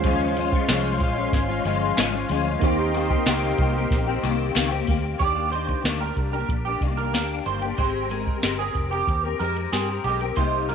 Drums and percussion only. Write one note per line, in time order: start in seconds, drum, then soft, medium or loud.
0.04 kick loud
0.04 closed hi-hat loud
0.37 closed hi-hat medium
0.52 kick loud
0.68 snare loud
0.68 clap medium
0.68 closed hi-hat medium
1.00 kick medium
1.00 closed hi-hat medium
1.32 kick loud
1.32 snare soft
1.32 closed hi-hat medium
1.65 closed hi-hat medium
1.97 snare loud
1.97 clap medium
1.97 closed hi-hat medium
2.29 open hi-hat medium
2.61 kick loud
2.61 closed hi-hat medium
2.94 closed hi-hat medium
3.10 kick loud
3.26 snare loud
3.26 clap medium
3.26 closed hi-hat medium
3.58 kick medium
3.58 closed hi-hat medium
3.91 kick loud
3.91 snare soft
3.91 closed hi-hat medium
4.24 clap medium
4.24 closed hi-hat medium
4.55 snare loud
4.55 clap medium
4.55 closed hi-hat medium
4.87 kick medium
4.87 open hi-hat medium
5.20 kick medium
5.20 closed hi-hat medium
5.53 closed hi-hat medium
5.68 kick medium
5.68 closed hi-hat soft
5.85 snare loud
5.85 closed hi-hat medium
6.17 kick medium
6.17 closed hi-hat medium
6.34 closed hi-hat soft
6.49 kick medium
6.49 closed hi-hat medium
6.81 kick medium
6.81 closed hi-hat medium
6.98 closed hi-hat soft
7.14 snare medium
7.14 closed hi-hat medium
7.46 closed hi-hat medium
7.62 closed hi-hat medium
7.78 kick medium
7.78 closed hi-hat medium
8.11 closed hi-hat medium
8.27 kick medium
8.27 closed hi-hat soft
8.43 snare loud
8.43 closed hi-hat medium
8.75 kick medium
8.75 closed hi-hat medium
8.93 closed hi-hat soft
9.07 kick medium
9.07 closed hi-hat medium
9.40 closed hi-hat medium
9.57 closed hi-hat soft
9.73 snare medium
9.73 closed hi-hat medium
10.04 closed hi-hat medium
10.21 closed hi-hat medium
10.36 kick medium
10.36 closed hi-hat medium
10.69 closed hi-hat medium